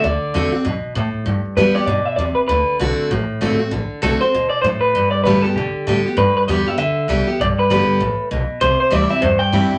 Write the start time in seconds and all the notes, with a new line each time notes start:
0.04 D2 D3 D5
0.22 muted upright bass stroke
0.34 E2 D3 A3 C4 F#4
0.52 C4 F#4
0.65 F#2 B2
0.84 muted upright bass stroke
0.95 A2
1.14 muted upright bass stroke
1.26 G2
1.45 muted upright bass stroke
1.56 F#2 D3 G3 B3 G4 B4
1.75 B3 G4 D5, muted upright bass stroke
1.86 G2 B2 D5
2.06 E5, muted upright bass stroke
2.16 E2 C3 D5
2.35 B4, muted upright bass stroke
2.48 D2 D3 B4
2.68 muted upright bass stroke
2.79 B1 D3 A3 C4 F#4
2.98 muted upright bass stroke
3.10 A1 A2
3.29 muted upright bass stroke
3.41 G1 D3 A3 C4 F#4
3.59 C4 F#4
3.71 A1 D3
3.90 muted upright bass stroke
4.02 B1 D3 A3 C4 F#4 A4
4.21 C4 F#4 C5, muted upright bass stroke
4.33 D2 B2
4.50 D5, muted upright bass stroke
4.62 F#2 A2 C5
4.81 B4, muted upright bass stroke
4.94 G2
5.11 D5, muted upright bass stroke
5.24 A2 D3 G3 B3 G4 B4
5.42 B3 G4 A4, muted upright bass stroke
5.55 B2 D3 G4
5.74 muted upright bass stroke
5.87 A2 D3 G3 B3 G4
6.06 B3 G4
6.17 G2 B4
6.36 B4, muted upright bass stroke
6.48 E2 D3 G3 B3 G4 D5
6.66 B3 G4 E5
6.78 D2 D3 E5
6.97 muted upright bass stroke
7.08 C2 D3 G3 B3 G4
7.27 B3 G4
7.39 B1 G2 D5
7.57 B4, muted upright bass stroke
7.70 G1 D3 G3 B3 G4 B4
7.88 muted upright bass stroke
8.00 A1 A2
8.19 muted upright bass stroke
8.31 B1 B2
8.50 muted upright bass stroke
8.61 C2 C3 C5
8.80 C5, muted upright bass stroke
8.91 D2 E3 G3 C4 E4 D5
9.09 C4 E4 E5
9.22 E2 G2 C5
9.39 G5, muted upright bass stroke
9.52 G2 E3 G3 C4 E4
9.71 C4 E4